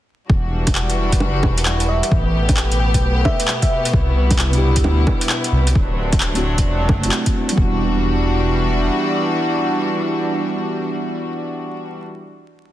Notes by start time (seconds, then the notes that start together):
0.29 E1 E3 G3 D4 F#4 B4, kick
0.67 kick, closed hi-hat, low bongo
0.75 clap
0.90 closed hi-hat
1.12 F#1, kick, closed hi-hat
1.20 low bongo
1.43 E1, kick, low bongo
1.58 closed hi-hat
1.66 clap
1.80 closed hi-hat
1.89 E5
2.03 closed hi-hat
2.11 A1 B2 A3 B3 G4, kick
2.49 kick, closed hi-hat, low bongo
2.57 clap
2.72 closed hi-hat
2.80 G5
2.94 B1, kick, closed hi-hat
3.25 E5, kick, low bongo
3.40 closed hi-hat
3.48 clap
3.62 E5, kick, closed hi-hat
3.85 closed hi-hat
3.93 C2 G3 E4, kick
4.31 kick, closed hi-hat, low bongo
4.39 clap
4.50 B3 D4, closed hi-hat
4.55 E4 G4
4.76 D2, kick, closed hi-hat
4.84 low bongo
5.07 kick, low bongo
5.21 closed hi-hat
5.29 clap
5.44 closed hi-hat
5.52 C2
5.67 closed hi-hat
5.75 D1 C3 F#3 A3 D4, kick
6.12 kick, closed hi-hat, low bongo
6.20 clap
6.33 A3 C4 E4 F#4, closed hi-hat
6.58 E1, kick, closed hi-hat
6.89 F#1, kick, low bongo
7.00 A3 C4, closed hi-hat
7.05 E4 F#4
7.12 clap
7.26 kick, closed hi-hat
7.49 G3, closed hi-hat
7.56 E1 E3 G3 B3 D4 F#4, kick
7.64 F#4